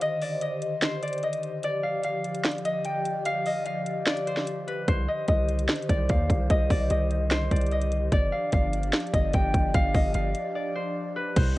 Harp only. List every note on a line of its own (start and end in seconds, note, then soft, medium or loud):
0.00 0.37 C5 loud
0.00 0.28 D#5 loud
0.00 1.27 F5 medium
0.22 0.48 D5 medium
0.42 1.09 D#5 medium
0.82 2.80 C5 loud
1.03 1.29 D5 medium
1.23 1.70 D#5 medium
1.64 2.71 D5 loud
1.83 2.04 F5 medium
2.04 3.25 F5 medium
2.65 3.46 D#5 medium
2.85 4.40 G5 medium
3.26 3.66 F5 loud
3.46 4.13 D#5 medium
3.66 5.33 F5 medium
4.07 5.14 D5 medium
4.27 4.73 C5 medium
4.67 4.94 B4 medium
4.88 6.86 C5 loud
5.08 5.28 D#5 medium
5.28 5.95 D#5 medium
5.89 6.56 D5 medium
6.10 7.76 F5 medium
6.50 6.76 D#5 loud
6.71 6.97 D5 medium
6.91 7.57 D#5 medium
7.31 9.29 C5 loud
7.51 7.78 D5 medium
7.72 8.19 D#5 medium
8.13 9.20 D5 loud
8.32 8.53 F5 medium
8.53 9.74 F5 medium
9.14 9.95 D#5 medium
9.34 10.89 G5 medium
9.74 10.14 F5 loud
9.95 10.61 D#5 medium
10.15 11.58 F5 medium
10.55 11.58 D5 medium
10.75 11.22 C5 medium
11.16 11.42 B4 medium
11.36 11.58 C5 loud